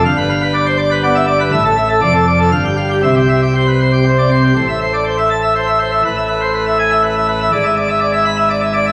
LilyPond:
<<
  \new Staff \with { instrumentName = "Pipe organ" } { \time 3/4 \key c \major \tempo 4 = 122 f''16 b'16 f''16 b'16 d''16 c''16 d''16 b'16 d''16 e''16 d''16 b'16 | e''16 a'16 e''16 a'16 d''16 a'16 d''16 a'16 f''16 g'16 f''16 g'16 | e''16 g'16 e''16 g'16 c''16 b'16 c''16 g'16 c''16 d''16 c''16 g'16 | \key a \minor c''16 e''16 c''16 d''16 c''16 e''16 a''16 e''16 c''16 e''16 c''16 e''16 |
b'16 e''16 b'16 c''16 b'16 e''16 gis''16 e''16 b'16 e''16 b'16 e''16 | d''16 e''16 d''16 e''16 d''16 e''16 b''16 e''16 d''16 e''16 d''16 e''16 | }
  \new Staff \with { instrumentName = "Pipe organ" } { \clef bass \time 3/4 \key c \major << { g,2 b8 r8 | a,4 f,4 g,4 | c2 c'8 r8 | \key a \minor a,2. |
a,2. | gis,2. | } \\ { g,,2. | a,,4 f,,4 g,,4 | c,2. | a,,2. |
a,,2. | gis,,2. | } >> }
>>